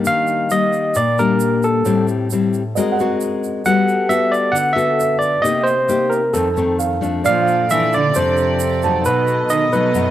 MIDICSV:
0, 0, Header, 1, 7, 480
1, 0, Start_track
1, 0, Tempo, 449775
1, 57, Time_signature, 4, 2, 24, 8
1, 10785, End_track
2, 0, Start_track
2, 0, Title_t, "Grand piano"
2, 0, Program_c, 0, 0
2, 0, Control_c, 0, 64, 127
2, 0, Note_on_c, 0, 63, 40
2, 0, Note_on_c, 0, 70, 47
2, 69, Control_c, 0, 64, 0
2, 110, Note_off_c, 0, 70, 0
2, 257, Note_off_c, 0, 63, 0
2, 2937, Note_on_c, 0, 75, 33
2, 3112, Note_on_c, 0, 78, 41
2, 3118, Control_c, 0, 64, 127
2, 3912, Control_c, 0, 64, 0
2, 4095, Note_off_c, 0, 75, 0
2, 4097, Control_c, 0, 64, 127
2, 4243, Note_off_c, 0, 78, 0
2, 5331, Note_on_c, 0, 76, 37
2, 5833, Control_c, 0, 64, 0
2, 6012, Note_off_c, 0, 76, 0
2, 6946, Control_c, 0, 64, 127
2, 7245, Note_on_c, 0, 77, 39
2, 7728, Note_on_c, 0, 74, 62
2, 7755, Control_c, 0, 64, 0
2, 7896, Note_off_c, 0, 77, 0
2, 7912, Note_on_c, 0, 77, 39
2, 7930, Control_c, 0, 64, 127
2, 9428, Note_on_c, 0, 81, 47
2, 9470, Note_off_c, 0, 74, 0
2, 9622, Note_off_c, 0, 77, 0
2, 9673, Control_c, 0, 64, 0
2, 9871, Note_off_c, 0, 81, 0
2, 9878, Control_c, 0, 64, 127
2, 10785, End_track
3, 0, Start_track
3, 0, Title_t, "Tine electric piano"
3, 0, Program_c, 1, 4
3, 74, Note_on_c, 1, 77, 105
3, 549, Note_on_c, 1, 75, 97
3, 560, Note_off_c, 1, 77, 0
3, 1031, Note_on_c, 1, 74, 84
3, 1038, Note_off_c, 1, 75, 0
3, 1271, Note_off_c, 1, 74, 0
3, 1272, Note_on_c, 1, 70, 80
3, 1752, Note_on_c, 1, 69, 81
3, 1759, Note_off_c, 1, 70, 0
3, 2192, Note_off_c, 1, 69, 0
3, 3903, Note_on_c, 1, 78, 99
3, 4367, Note_on_c, 1, 76, 99
3, 4395, Note_off_c, 1, 78, 0
3, 4606, Note_on_c, 1, 74, 85
3, 4620, Note_off_c, 1, 76, 0
3, 4822, Note_on_c, 1, 78, 86
3, 4860, Note_off_c, 1, 74, 0
3, 5047, Note_on_c, 1, 76, 99
3, 5088, Note_off_c, 1, 78, 0
3, 5517, Note_off_c, 1, 76, 0
3, 5536, Note_on_c, 1, 74, 82
3, 5784, Note_on_c, 1, 75, 98
3, 5805, Note_off_c, 1, 74, 0
3, 6014, Note_on_c, 1, 72, 80
3, 6049, Note_off_c, 1, 75, 0
3, 6505, Note_on_c, 1, 70, 74
3, 6531, Note_off_c, 1, 72, 0
3, 6760, Note_on_c, 1, 69, 62
3, 6770, Note_off_c, 1, 70, 0
3, 7215, Note_off_c, 1, 69, 0
3, 7744, Note_on_c, 1, 77, 105
3, 8227, Note_on_c, 1, 76, 102
3, 8236, Note_off_c, 1, 77, 0
3, 8470, Note_off_c, 1, 76, 0
3, 8477, Note_on_c, 1, 74, 86
3, 8710, Note_on_c, 1, 72, 73
3, 8715, Note_off_c, 1, 74, 0
3, 9666, Note_on_c, 1, 71, 83
3, 9694, Note_off_c, 1, 72, 0
3, 10140, Note_on_c, 1, 75, 97
3, 10157, Note_off_c, 1, 71, 0
3, 10382, Note_on_c, 1, 71, 74
3, 10387, Note_off_c, 1, 75, 0
3, 10785, Note_off_c, 1, 71, 0
3, 10785, End_track
4, 0, Start_track
4, 0, Title_t, "String section"
4, 0, Program_c, 2, 48
4, 7732, Note_on_c, 2, 74, 77
4, 7746, Note_on_c, 2, 69, 67
4, 9637, Note_off_c, 2, 74, 0
4, 9676, Note_on_c, 2, 75, 78
4, 9684, Note_on_c, 2, 59, 76
4, 10785, Note_off_c, 2, 59, 0
4, 10785, Note_off_c, 2, 69, 0
4, 10785, Note_off_c, 2, 75, 0
4, 10785, End_track
5, 0, Start_track
5, 0, Title_t, "Nylon-string guitar"
5, 0, Program_c, 3, 24
5, 0, Note_on_c, 3, 55, 57
5, 0, Note_on_c, 3, 58, 58
5, 0, Note_on_c, 3, 62, 54
5, 69, Note_on_c, 3, 51, 66
5, 500, Note_off_c, 3, 55, 0
5, 502, Note_off_c, 3, 58, 0
5, 504, Note_off_c, 3, 62, 0
5, 543, Note_on_c, 3, 55, 57
5, 549, Note_on_c, 3, 58, 50
5, 1000, Note_off_c, 3, 51, 0
5, 1018, Note_off_c, 3, 55, 0
5, 1019, Note_on_c, 3, 46, 67
5, 1020, Note_off_c, 3, 58, 0
5, 1267, Note_on_c, 3, 55, 59
5, 1271, Note_on_c, 3, 58, 60
5, 1276, Note_on_c, 3, 62, 69
5, 1945, Note_off_c, 3, 55, 0
5, 1945, Note_off_c, 3, 58, 0
5, 1949, Note_off_c, 3, 62, 0
5, 1955, Note_off_c, 3, 46, 0
5, 1979, Note_on_c, 3, 45, 74
5, 1982, Note_on_c, 3, 55, 62
5, 1987, Note_on_c, 3, 60, 61
5, 1992, Note_on_c, 3, 64, 58
5, 2423, Note_off_c, 3, 55, 0
5, 2423, Note_off_c, 3, 60, 0
5, 2427, Note_off_c, 3, 64, 0
5, 2478, Note_on_c, 3, 55, 52
5, 2481, Note_on_c, 3, 60, 61
5, 2488, Note_on_c, 3, 64, 60
5, 2791, Note_off_c, 3, 55, 0
5, 2793, Note_off_c, 3, 60, 0
5, 2795, Note_off_c, 3, 64, 0
5, 2915, Note_off_c, 3, 45, 0
5, 2954, Note_on_c, 3, 56, 74
5, 2956, Note_on_c, 3, 60, 57
5, 2959, Note_on_c, 3, 66, 55
5, 2964, Note_on_c, 3, 70, 61
5, 3148, Note_off_c, 3, 60, 0
5, 3150, Note_off_c, 3, 66, 0
5, 3153, Note_off_c, 3, 70, 0
5, 3204, Note_on_c, 3, 60, 63
5, 3206, Note_on_c, 3, 66, 64
5, 3209, Note_on_c, 3, 70, 65
5, 3873, Note_off_c, 3, 60, 0
5, 3873, Note_off_c, 3, 66, 0
5, 3875, Note_off_c, 3, 70, 0
5, 3883, Note_off_c, 3, 56, 0
5, 3904, Note_on_c, 3, 55, 70
5, 3904, Note_on_c, 3, 59, 57
5, 3909, Note_on_c, 3, 69, 66
5, 3910, Note_on_c, 3, 66, 63
5, 4342, Note_off_c, 3, 59, 0
5, 4343, Note_off_c, 3, 66, 0
5, 4345, Note_off_c, 3, 69, 0
5, 4365, Note_on_c, 3, 59, 54
5, 4371, Note_on_c, 3, 66, 52
5, 4375, Note_on_c, 3, 69, 54
5, 4828, Note_on_c, 3, 50, 68
5, 4839, Note_off_c, 3, 55, 0
5, 5053, Note_off_c, 3, 59, 0
5, 5057, Note_off_c, 3, 66, 0
5, 5057, Note_off_c, 3, 69, 0
5, 5073, Note_on_c, 3, 59, 62
5, 5080, Note_on_c, 3, 66, 57
5, 5083, Note_on_c, 3, 69, 62
5, 5768, Note_off_c, 3, 59, 0
5, 5769, Note_off_c, 3, 66, 0
5, 5772, Note_off_c, 3, 69, 0
5, 5779, Note_off_c, 3, 50, 0
5, 5794, Note_on_c, 3, 48, 70
5, 5800, Note_on_c, 3, 63, 57
5, 5802, Note_on_c, 3, 58, 51
5, 5803, Note_on_c, 3, 67, 68
5, 6118, Note_off_c, 3, 63, 0
5, 6120, Note_off_c, 3, 58, 0
5, 6120, Note_off_c, 3, 67, 0
5, 6280, Note_on_c, 3, 58, 51
5, 6286, Note_on_c, 3, 63, 54
5, 6291, Note_on_c, 3, 67, 59
5, 6612, Note_off_c, 3, 58, 0
5, 6614, Note_off_c, 3, 63, 0
5, 6617, Note_off_c, 3, 67, 0
5, 6743, Note_off_c, 3, 48, 0
5, 6760, Note_on_c, 3, 41, 69
5, 6761, Note_on_c, 3, 51, 51
5, 6766, Note_on_c, 3, 57, 55
5, 6769, Note_on_c, 3, 60, 62
5, 6911, Note_off_c, 3, 51, 0
5, 6912, Note_off_c, 3, 57, 0
5, 6915, Note_off_c, 3, 60, 0
5, 7010, Note_on_c, 3, 51, 59
5, 7012, Note_on_c, 3, 57, 59
5, 7021, Note_on_c, 3, 60, 64
5, 7456, Note_off_c, 3, 51, 0
5, 7457, Note_off_c, 3, 57, 0
5, 7462, Note_off_c, 3, 60, 0
5, 7480, Note_on_c, 3, 53, 51
5, 7488, Note_on_c, 3, 57, 57
5, 7492, Note_on_c, 3, 62, 52
5, 7706, Note_off_c, 3, 41, 0
5, 7733, Note_on_c, 3, 46, 75
5, 8172, Note_off_c, 3, 53, 0
5, 8176, Note_off_c, 3, 57, 0
5, 8177, Note_off_c, 3, 62, 0
5, 8228, Note_on_c, 3, 53, 48
5, 8235, Note_on_c, 3, 57, 54
5, 8235, Note_on_c, 3, 62, 53
5, 8533, Note_off_c, 3, 53, 0
5, 8536, Note_off_c, 3, 57, 0
5, 8536, Note_off_c, 3, 62, 0
5, 8672, Note_off_c, 3, 46, 0
5, 8708, Note_on_c, 3, 41, 72
5, 8712, Note_on_c, 3, 53, 53
5, 8714, Note_on_c, 3, 57, 54
5, 8721, Note_on_c, 3, 62, 58
5, 9182, Note_off_c, 3, 53, 0
5, 9184, Note_off_c, 3, 57, 0
5, 9187, Note_off_c, 3, 62, 0
5, 9434, Note_on_c, 3, 54, 56
5, 9438, Note_on_c, 3, 57, 56
5, 9446, Note_on_c, 3, 63, 65
5, 9640, Note_off_c, 3, 41, 0
5, 9665, Note_on_c, 3, 47, 69
5, 10349, Note_off_c, 3, 54, 0
5, 10351, Note_off_c, 3, 57, 0
5, 10353, Note_off_c, 3, 63, 0
5, 10381, Note_on_c, 3, 54, 62
5, 10386, Note_on_c, 3, 57, 60
5, 10390, Note_on_c, 3, 63, 64
5, 10582, Note_off_c, 3, 54, 0
5, 10585, Note_off_c, 3, 57, 0
5, 10586, Note_off_c, 3, 63, 0
5, 10598, Note_off_c, 3, 47, 0
5, 10610, Note_on_c, 3, 54, 53
5, 10612, Note_on_c, 3, 42, 64
5, 10615, Note_on_c, 3, 57, 52
5, 10624, Note_on_c, 3, 63, 65
5, 10785, Note_off_c, 3, 42, 0
5, 10785, Note_off_c, 3, 54, 0
5, 10785, Note_off_c, 3, 57, 0
5, 10785, Note_off_c, 3, 63, 0
5, 10785, End_track
6, 0, Start_track
6, 0, Title_t, "Cello"
6, 0, Program_c, 4, 42
6, 7748, Note_on_c, 4, 53, 89
6, 8191, Note_off_c, 4, 53, 0
6, 8221, Note_on_c, 4, 52, 80
6, 8444, Note_off_c, 4, 52, 0
6, 8470, Note_on_c, 4, 50, 83
6, 8689, Note_off_c, 4, 50, 0
6, 8695, Note_on_c, 4, 48, 80
6, 9615, Note_off_c, 4, 48, 0
6, 9652, Note_on_c, 4, 47, 77
6, 10102, Note_off_c, 4, 47, 0
6, 10128, Note_on_c, 4, 51, 71
6, 10357, Note_off_c, 4, 51, 0
6, 10379, Note_on_c, 4, 47, 75
6, 10785, Note_off_c, 4, 47, 0
6, 10785, End_track
7, 0, Start_track
7, 0, Title_t, "Drums"
7, 50, Note_on_c, 9, 82, 62
7, 156, Note_off_c, 9, 82, 0
7, 289, Note_on_c, 9, 82, 26
7, 395, Note_off_c, 9, 82, 0
7, 534, Note_on_c, 9, 82, 64
7, 641, Note_off_c, 9, 82, 0
7, 777, Note_on_c, 9, 82, 26
7, 883, Note_off_c, 9, 82, 0
7, 1009, Note_on_c, 9, 82, 63
7, 1116, Note_off_c, 9, 82, 0
7, 1264, Note_on_c, 9, 82, 28
7, 1371, Note_off_c, 9, 82, 0
7, 1492, Note_on_c, 9, 82, 62
7, 1599, Note_off_c, 9, 82, 0
7, 1737, Note_on_c, 9, 82, 27
7, 1844, Note_off_c, 9, 82, 0
7, 1978, Note_on_c, 9, 82, 66
7, 2085, Note_off_c, 9, 82, 0
7, 2217, Note_on_c, 9, 82, 27
7, 2323, Note_off_c, 9, 82, 0
7, 2456, Note_on_c, 9, 82, 62
7, 2563, Note_off_c, 9, 82, 0
7, 2703, Note_on_c, 9, 82, 26
7, 2810, Note_off_c, 9, 82, 0
7, 2950, Note_on_c, 9, 82, 64
7, 3057, Note_off_c, 9, 82, 0
7, 3193, Note_on_c, 9, 82, 24
7, 3300, Note_off_c, 9, 82, 0
7, 3423, Note_on_c, 9, 82, 60
7, 3530, Note_off_c, 9, 82, 0
7, 3667, Note_on_c, 9, 82, 26
7, 3774, Note_off_c, 9, 82, 0
7, 3898, Note_on_c, 9, 82, 60
7, 4005, Note_off_c, 9, 82, 0
7, 4144, Note_on_c, 9, 82, 25
7, 4250, Note_off_c, 9, 82, 0
7, 4381, Note_on_c, 9, 82, 59
7, 4488, Note_off_c, 9, 82, 0
7, 4630, Note_on_c, 9, 82, 26
7, 4736, Note_off_c, 9, 82, 0
7, 4863, Note_on_c, 9, 82, 67
7, 4969, Note_off_c, 9, 82, 0
7, 5100, Note_on_c, 9, 82, 29
7, 5206, Note_off_c, 9, 82, 0
7, 5337, Note_on_c, 9, 82, 66
7, 5444, Note_off_c, 9, 82, 0
7, 5568, Note_on_c, 9, 82, 30
7, 5675, Note_off_c, 9, 82, 0
7, 5817, Note_on_c, 9, 82, 60
7, 5923, Note_off_c, 9, 82, 0
7, 6051, Note_on_c, 9, 82, 26
7, 6158, Note_off_c, 9, 82, 0
7, 6286, Note_on_c, 9, 82, 60
7, 6392, Note_off_c, 9, 82, 0
7, 6532, Note_on_c, 9, 82, 27
7, 6638, Note_off_c, 9, 82, 0
7, 6767, Note_on_c, 9, 82, 68
7, 6874, Note_off_c, 9, 82, 0
7, 7008, Note_on_c, 9, 82, 24
7, 7114, Note_off_c, 9, 82, 0
7, 7253, Note_on_c, 9, 82, 67
7, 7360, Note_off_c, 9, 82, 0
7, 7501, Note_on_c, 9, 82, 28
7, 7608, Note_off_c, 9, 82, 0
7, 7737, Note_on_c, 9, 82, 62
7, 7844, Note_off_c, 9, 82, 0
7, 7980, Note_on_c, 9, 82, 27
7, 8086, Note_off_c, 9, 82, 0
7, 8216, Note_on_c, 9, 82, 66
7, 8323, Note_off_c, 9, 82, 0
7, 8459, Note_on_c, 9, 82, 29
7, 8566, Note_off_c, 9, 82, 0
7, 8690, Note_on_c, 9, 82, 66
7, 8797, Note_off_c, 9, 82, 0
7, 8932, Note_on_c, 9, 82, 29
7, 9039, Note_off_c, 9, 82, 0
7, 9173, Note_on_c, 9, 82, 60
7, 9279, Note_off_c, 9, 82, 0
7, 9418, Note_on_c, 9, 82, 28
7, 9524, Note_off_c, 9, 82, 0
7, 9656, Note_on_c, 9, 82, 62
7, 9763, Note_off_c, 9, 82, 0
7, 9898, Note_on_c, 9, 82, 25
7, 10004, Note_off_c, 9, 82, 0
7, 10132, Note_on_c, 9, 82, 63
7, 10239, Note_off_c, 9, 82, 0
7, 10381, Note_on_c, 9, 82, 25
7, 10488, Note_off_c, 9, 82, 0
7, 10616, Note_on_c, 9, 82, 64
7, 10723, Note_off_c, 9, 82, 0
7, 10785, End_track
0, 0, End_of_file